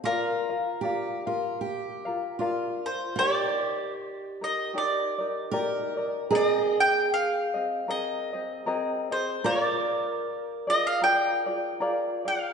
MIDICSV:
0, 0, Header, 1, 4, 480
1, 0, Start_track
1, 0, Key_signature, -2, "major"
1, 0, Tempo, 783085
1, 29, Time_signature, 4, 2, 24, 8
1, 1949, Key_signature, -3, "major"
1, 7681, End_track
2, 0, Start_track
2, 0, Title_t, "Mandolin"
2, 0, Program_c, 0, 25
2, 33, Note_on_c, 0, 70, 88
2, 1447, Note_off_c, 0, 70, 0
2, 1753, Note_on_c, 0, 72, 81
2, 1951, Note_off_c, 0, 72, 0
2, 1954, Note_on_c, 0, 74, 103
2, 2407, Note_off_c, 0, 74, 0
2, 2721, Note_on_c, 0, 75, 82
2, 2925, Note_off_c, 0, 75, 0
2, 2928, Note_on_c, 0, 74, 81
2, 3890, Note_off_c, 0, 74, 0
2, 3893, Note_on_c, 0, 74, 95
2, 3960, Note_off_c, 0, 74, 0
2, 3960, Note_on_c, 0, 75, 95
2, 4161, Note_off_c, 0, 75, 0
2, 4171, Note_on_c, 0, 79, 108
2, 4370, Note_off_c, 0, 79, 0
2, 4375, Note_on_c, 0, 77, 93
2, 4846, Note_on_c, 0, 75, 83
2, 4857, Note_off_c, 0, 77, 0
2, 5294, Note_off_c, 0, 75, 0
2, 5592, Note_on_c, 0, 72, 78
2, 5794, Note_off_c, 0, 72, 0
2, 5797, Note_on_c, 0, 73, 98
2, 5901, Note_off_c, 0, 73, 0
2, 5901, Note_on_c, 0, 74, 98
2, 6556, Note_off_c, 0, 74, 0
2, 6558, Note_on_c, 0, 75, 89
2, 6658, Note_off_c, 0, 75, 0
2, 6661, Note_on_c, 0, 77, 92
2, 6761, Note_off_c, 0, 77, 0
2, 6765, Note_on_c, 0, 79, 99
2, 7524, Note_off_c, 0, 79, 0
2, 7526, Note_on_c, 0, 77, 85
2, 7681, Note_off_c, 0, 77, 0
2, 7681, End_track
3, 0, Start_track
3, 0, Title_t, "Ukulele"
3, 0, Program_c, 1, 24
3, 31, Note_on_c, 1, 65, 71
3, 31, Note_on_c, 1, 74, 80
3, 35, Note_on_c, 1, 70, 76
3, 36, Note_on_c, 1, 77, 80
3, 295, Note_off_c, 1, 77, 0
3, 302, Note_off_c, 1, 65, 0
3, 302, Note_off_c, 1, 74, 0
3, 302, Note_on_c, 1, 77, 54
3, 303, Note_off_c, 1, 70, 0
3, 310, Note_on_c, 1, 70, 46
3, 314, Note_on_c, 1, 65, 38
3, 505, Note_off_c, 1, 65, 0
3, 509, Note_off_c, 1, 70, 0
3, 509, Note_on_c, 1, 74, 56
3, 510, Note_off_c, 1, 77, 0
3, 512, Note_on_c, 1, 65, 62
3, 516, Note_on_c, 1, 70, 55
3, 520, Note_on_c, 1, 77, 65
3, 768, Note_off_c, 1, 77, 0
3, 773, Note_off_c, 1, 70, 0
3, 776, Note_on_c, 1, 77, 58
3, 780, Note_on_c, 1, 70, 54
3, 781, Note_off_c, 1, 65, 0
3, 781, Note_off_c, 1, 74, 0
3, 788, Note_on_c, 1, 65, 43
3, 1250, Note_off_c, 1, 77, 0
3, 1257, Note_on_c, 1, 77, 58
3, 1265, Note_off_c, 1, 65, 0
3, 1265, Note_off_c, 1, 70, 0
3, 1265, Note_on_c, 1, 70, 47
3, 1271, Note_on_c, 1, 65, 49
3, 1463, Note_off_c, 1, 65, 0
3, 1466, Note_off_c, 1, 70, 0
3, 1467, Note_off_c, 1, 77, 0
3, 1468, Note_on_c, 1, 74, 66
3, 1470, Note_on_c, 1, 65, 74
3, 1476, Note_on_c, 1, 70, 70
3, 1479, Note_on_c, 1, 77, 74
3, 1949, Note_off_c, 1, 74, 0
3, 1950, Note_off_c, 1, 65, 0
3, 1951, Note_on_c, 1, 67, 79
3, 1954, Note_off_c, 1, 77, 0
3, 1955, Note_off_c, 1, 70, 0
3, 1955, Note_on_c, 1, 63, 72
3, 1957, Note_on_c, 1, 70, 79
3, 1961, Note_on_c, 1, 74, 73
3, 2702, Note_off_c, 1, 67, 0
3, 2705, Note_off_c, 1, 70, 0
3, 2705, Note_on_c, 1, 70, 43
3, 2707, Note_off_c, 1, 74, 0
3, 2709, Note_off_c, 1, 63, 0
3, 2711, Note_on_c, 1, 63, 42
3, 2901, Note_off_c, 1, 70, 0
3, 2902, Note_off_c, 1, 63, 0
3, 2904, Note_on_c, 1, 67, 60
3, 2910, Note_on_c, 1, 63, 57
3, 2912, Note_on_c, 1, 70, 58
3, 2915, Note_on_c, 1, 74, 64
3, 3170, Note_off_c, 1, 74, 0
3, 3177, Note_on_c, 1, 74, 47
3, 3178, Note_off_c, 1, 70, 0
3, 3179, Note_off_c, 1, 67, 0
3, 3182, Note_off_c, 1, 63, 0
3, 3185, Note_on_c, 1, 70, 44
3, 3191, Note_on_c, 1, 63, 45
3, 3382, Note_off_c, 1, 63, 0
3, 3383, Note_off_c, 1, 70, 0
3, 3384, Note_on_c, 1, 67, 76
3, 3385, Note_off_c, 1, 74, 0
3, 3389, Note_on_c, 1, 63, 82
3, 3391, Note_on_c, 1, 70, 80
3, 3392, Note_on_c, 1, 74, 86
3, 3651, Note_off_c, 1, 74, 0
3, 3658, Note_on_c, 1, 74, 56
3, 3659, Note_off_c, 1, 67, 0
3, 3659, Note_off_c, 1, 70, 0
3, 3662, Note_off_c, 1, 63, 0
3, 3666, Note_on_c, 1, 70, 49
3, 3673, Note_on_c, 1, 63, 46
3, 3859, Note_off_c, 1, 70, 0
3, 3866, Note_on_c, 1, 70, 80
3, 3867, Note_off_c, 1, 63, 0
3, 3868, Note_off_c, 1, 74, 0
3, 3869, Note_on_c, 1, 60, 70
3, 3873, Note_on_c, 1, 68, 81
3, 3876, Note_on_c, 1, 75, 85
3, 4614, Note_off_c, 1, 75, 0
3, 4621, Note_on_c, 1, 75, 54
3, 4622, Note_off_c, 1, 60, 0
3, 4624, Note_off_c, 1, 70, 0
3, 4627, Note_off_c, 1, 68, 0
3, 4627, Note_on_c, 1, 68, 49
3, 4633, Note_on_c, 1, 60, 47
3, 4826, Note_off_c, 1, 60, 0
3, 4828, Note_off_c, 1, 68, 0
3, 4830, Note_off_c, 1, 75, 0
3, 4830, Note_on_c, 1, 70, 66
3, 4833, Note_on_c, 1, 60, 63
3, 4837, Note_on_c, 1, 68, 57
3, 4839, Note_on_c, 1, 75, 68
3, 5098, Note_off_c, 1, 75, 0
3, 5102, Note_off_c, 1, 70, 0
3, 5104, Note_off_c, 1, 60, 0
3, 5104, Note_off_c, 1, 68, 0
3, 5106, Note_on_c, 1, 75, 55
3, 5111, Note_on_c, 1, 68, 49
3, 5117, Note_on_c, 1, 60, 45
3, 5306, Note_off_c, 1, 60, 0
3, 5307, Note_off_c, 1, 68, 0
3, 5309, Note_on_c, 1, 70, 86
3, 5310, Note_off_c, 1, 75, 0
3, 5314, Note_on_c, 1, 60, 79
3, 5314, Note_on_c, 1, 68, 92
3, 5318, Note_on_c, 1, 75, 89
3, 5577, Note_off_c, 1, 75, 0
3, 5582, Note_off_c, 1, 70, 0
3, 5583, Note_off_c, 1, 68, 0
3, 5584, Note_off_c, 1, 60, 0
3, 5585, Note_on_c, 1, 75, 50
3, 5590, Note_on_c, 1, 68, 49
3, 5595, Note_on_c, 1, 60, 44
3, 5783, Note_off_c, 1, 68, 0
3, 5786, Note_on_c, 1, 70, 77
3, 5787, Note_off_c, 1, 60, 0
3, 5789, Note_on_c, 1, 65, 77
3, 5790, Note_on_c, 1, 68, 79
3, 5792, Note_off_c, 1, 75, 0
3, 5796, Note_on_c, 1, 74, 93
3, 6534, Note_off_c, 1, 74, 0
3, 6541, Note_off_c, 1, 68, 0
3, 6541, Note_on_c, 1, 74, 52
3, 6542, Note_off_c, 1, 65, 0
3, 6549, Note_on_c, 1, 68, 51
3, 6555, Note_on_c, 1, 65, 45
3, 6567, Note_off_c, 1, 70, 0
3, 6747, Note_off_c, 1, 65, 0
3, 6750, Note_off_c, 1, 74, 0
3, 6752, Note_on_c, 1, 70, 62
3, 6754, Note_off_c, 1, 68, 0
3, 6754, Note_on_c, 1, 65, 59
3, 6761, Note_on_c, 1, 68, 68
3, 6765, Note_on_c, 1, 74, 67
3, 7019, Note_off_c, 1, 74, 0
3, 7024, Note_off_c, 1, 70, 0
3, 7025, Note_off_c, 1, 65, 0
3, 7025, Note_off_c, 1, 68, 0
3, 7026, Note_on_c, 1, 74, 55
3, 7032, Note_on_c, 1, 68, 47
3, 7038, Note_on_c, 1, 65, 42
3, 7229, Note_off_c, 1, 65, 0
3, 7231, Note_off_c, 1, 68, 0
3, 7233, Note_off_c, 1, 74, 0
3, 7234, Note_on_c, 1, 70, 79
3, 7236, Note_on_c, 1, 65, 84
3, 7238, Note_on_c, 1, 68, 87
3, 7243, Note_on_c, 1, 74, 84
3, 7501, Note_off_c, 1, 74, 0
3, 7505, Note_off_c, 1, 68, 0
3, 7505, Note_off_c, 1, 70, 0
3, 7506, Note_off_c, 1, 65, 0
3, 7509, Note_on_c, 1, 74, 48
3, 7513, Note_on_c, 1, 68, 47
3, 7519, Note_on_c, 1, 65, 39
3, 7681, Note_off_c, 1, 65, 0
3, 7681, Note_off_c, 1, 68, 0
3, 7681, Note_off_c, 1, 74, 0
3, 7681, End_track
4, 0, Start_track
4, 0, Title_t, "Steel-string acoustic guitar"
4, 0, Program_c, 2, 25
4, 0, Note_on_c, 2, 67, 85
4, 22, Note_on_c, 2, 65, 84
4, 73, Note_off_c, 2, 67, 0
4, 496, Note_on_c, 2, 67, 84
4, 520, Note_off_c, 2, 65, 0
4, 775, Note_off_c, 2, 67, 0
4, 777, Note_on_c, 2, 65, 69
4, 984, Note_off_c, 2, 65, 0
4, 986, Note_on_c, 2, 67, 81
4, 1462, Note_off_c, 2, 67, 0
4, 1464, Note_on_c, 2, 65, 66
4, 1922, Note_off_c, 2, 65, 0
4, 1934, Note_on_c, 2, 67, 92
4, 3380, Note_on_c, 2, 70, 103
4, 3426, Note_off_c, 2, 67, 0
4, 3862, Note_off_c, 2, 70, 0
4, 3865, Note_on_c, 2, 68, 103
4, 5788, Note_on_c, 2, 70, 106
4, 5846, Note_off_c, 2, 68, 0
4, 7681, Note_off_c, 2, 70, 0
4, 7681, End_track
0, 0, End_of_file